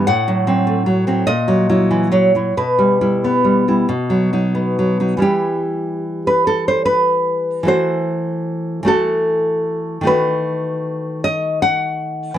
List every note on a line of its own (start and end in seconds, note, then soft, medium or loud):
0.07 1.22 A2 medium
0.07 1.21 F#5 medium
0.28 0.46 F#3 medium
0.47 0.85 F#3 soft
0.47 0.86 C4 soft
0.67 1.26 A3 soft
0.86 1.06 F#3 soft
1.07 1.24 F#3 soft
1.07 1.25 C4 soft
1.27 2.51 A#2 medium
1.27 2.08 D#5 medium
1.48 1.68 F#3 soft
1.69 2.10 F#3 soft
1.69 2.35 E4 soft
1.91 2.11 E3 soft
2.12 2.34 F#3 soft
2.12 2.53 C#5 medium
2.35 2.53 F#3 soft
2.35 2.54 E4 soft
2.57 3.85 B2 soft
2.57 4.73 B4 medium
2.79 3.00 G3 soft
3.01 3.43 G3 soft
3.01 3.67 E4 soft
3.24 3.89 B3 soft
3.44 3.67 G3 soft
3.68 3.86 G3 soft
3.68 3.87 E4 soft
3.89 5.17 B2 medium
4.10 4.32 F#3 soft
4.33 4.78 F#3 soft
4.33 4.99 D#4 soft
4.55 5.18 B3 soft
4.79 4.99 F#3 soft
5.00 5.17 F#3 soft
5.00 5.19 D#4 soft
5.17 7.61 E3 soft
5.17 7.62 G3 soft
5.17 7.63 E4 soft
5.22 6.22 G4 medium
6.27 6.46 B4 medium
6.47 6.66 A4 medium
6.68 6.85 C5 medium
6.85 7.64 B4 medium
7.63 8.82 E3 soft
7.63 8.83 A3 soft
7.63 8.84 F#4 soft
7.68 8.84 C5 medium
8.83 9.99 E3 soft
8.83 10.00 A3 soft
8.83 10.01 F#4 soft
8.88 10.01 A4 medium
10.01 12.31 D#3 soft
10.01 12.32 A3 soft
10.01 12.33 F#4 soft
10.07 11.19 B4 medium
11.24 11.60 D#5 medium
11.62 12.35 F#5 medium
12.34 12.38 E3 soft